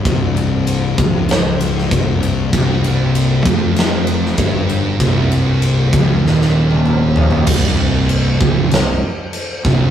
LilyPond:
<<
  \new Staff \with { instrumentName = "Distorted electric guitar" } { \clef bass \time 4/4 \key c \phrygian \tempo 4 = 97 r1 | c,4. f,4. g,4 | c,4. des,8 ees,2 | c,4. des,8 c,8 r4 c,8 | }
  \new Staff \with { instrumentName = "Distorted electric guitar" } { \clef bass \time 4/4 \key c \phrygian c,4. des,4. c,4 | c,4. f,4. g,4 | c,4. des,8 ees,2 | c,4. des,8 c,8 r4 c,8 | }
  \new Staff \with { instrumentName = "Fingered electric bass" } { \clef bass \time 4/4 \key c \phrygian c,,4. des,,4. c,,4 | c,,4. f,,4. g,,4 | c,,4. des,,8 ees,,2 | c,,4. des,,8 c,,8 r4 c,,8 | }
  \new DrumStaff \with { instrumentName = "Drums" } \drummode { \time 4/4 <bd cymr>8 cymr8 cymr8 <bd cymr>8 <cymr sn>8 cymr16 sn16 <bd cymr>8 cymr8 | <bd cymr>8 cymr8 cymr8 <bd cymr>8 <cymr sn>8 cymr16 sn16 <bd cymr>8 cymr8 | <bd cymr>8 cymr8 cymr8 <bd cymr>8 sn16 sn8 tommh16 toml8 tomfh16 tomfh16 | <cymc bd>4 cymc8 bd8 <cymc sn>4 cymc8 <bd sn>8 | }
>>